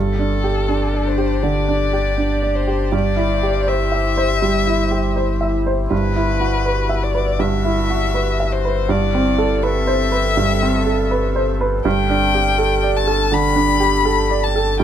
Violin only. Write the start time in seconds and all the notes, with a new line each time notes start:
Already playing: A4
1.06 C5
1.43 D5
2.55 C5
2.93 D5
3.68 E5
5.92 B4
7.03 D5
7.41 E5
8.52 C5
8.89 D5
9.63 E5
11.86 G5
12.96 A5
13.33 B5
14.44 A5
14.80 G5